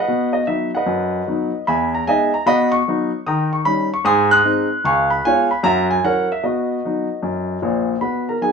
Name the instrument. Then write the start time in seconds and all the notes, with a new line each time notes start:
grand piano
Already playing: B4 F#5
0.00 D#5
0.08 B2
0.33 D#5
0.47 F#3 B3 D#4 E5
0.75 B4 D#5 F#5
0.86 F#2
1.27 F#3 B3 D#4
1.67 E2 E5 G#5 B5
1.95 A#5
2.07 G#3 B3 D#4 D#5 E5 G#5
2.34 A#5
2.46 B2 D#5 F#5 B5
2.72 C#6
2.88 F#3 B3 D#4
3.27 D#3 G5 A#5 D#6
3.53 C#6
3.65 G3 C#4 D#4 B5
3.94 C#6
4.05 G#2 G#5 C6 D#6
4.31 C6 D#6 F#6
4.44 G#3 C4 D#4
4.84 C#2 F5 G#5 C#6
5.10 B5
5.25 G#3 B3 F4 C#5 F5 G#5
5.51 B5
5.63 F#2 E5 F#5 A#5
5.91 G#5
6.04 F#3 C#4 E4 A#4 C#5 F#5
6.32 E5
6.43 B2 F#4 B4 D#5
6.84 F#3 B3 D#4
7.22 F#2
7.62 A#1 A#2
8.01 B2 B4 F#5 B5
8.29 A#4 A#5
8.41 F#3 B3 D#4 G#4 G#5